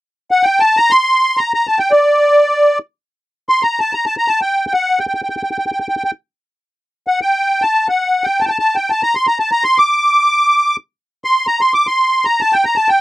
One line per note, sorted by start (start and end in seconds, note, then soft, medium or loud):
0.31 0.45 F#5 medium
0.43 0.61 G5 medium
0.60 0.78 A5 medium
0.77 0.91 A#5 medium
0.90 1.39 C6 loud
1.37 1.52 A#5 medium
1.54 1.67 A#5 medium
1.67 1.79 A5 medium
1.79 1.92 G5 medium
1.91 2.78 D5 medium
3.49 3.63 C6 medium
3.63 3.79 A#5 medium
3.79 3.93 A5 medium
3.93 4.05 A#5 medium
4.06 4.16 A5 medium
4.18 4.29 A#5 medium
4.28 4.40 A5 medium
4.41 4.65 G5 medium
4.67 4.73 G5 soft
4.73 4.99 F#5 medium
4.99 5.06 G5 medium
5.07 5.13 G5 soft
5.15 5.21 G5 soft
5.23 5.28 G5 soft
5.30 5.35 G5 soft
5.37 5.42 G5 soft
5.43 5.50 G5 soft
5.51 5.57 G5 soft
5.59 5.65 G5 soft
5.66 5.71 G5 soft
5.72 5.79 G5 soft
5.80 5.87 G5 soft
5.89 5.95 G5 soft
5.97 6.03 G5 soft
6.04 6.11 G5 medium
7.07 7.20 F#5 medium
7.22 7.63 G5 medium
7.62 7.88 A5 medium
7.88 8.26 F#5 medium
8.24 8.41 G5 medium
8.40 8.45 A5 medium
8.45 8.50 G5 medium
8.45 8.58 A5 medium
8.59 8.76 A5 medium
8.75 8.91 G5 medium
8.90 9.02 A5 medium
9.03 9.15 A#5 medium
9.15 9.27 C6 medium
9.27 9.38 A#5 medium
9.39 9.51 A5 medium
9.52 9.64 A#5 medium
9.64 9.78 C6 medium
9.78 10.76 D6 medium
11.24 11.47 C6 medium
11.47 11.61 A#5 medium
11.61 11.73 C6 medium
11.74 11.87 D6 medium
11.87 12.25 C6 medium
12.25 12.41 A#5 medium
12.41 12.54 A5 medium
12.53 12.65 G5 medium
12.65 12.77 A#5 medium
12.76 12.90 A5 medium
12.88 13.01 G5 medium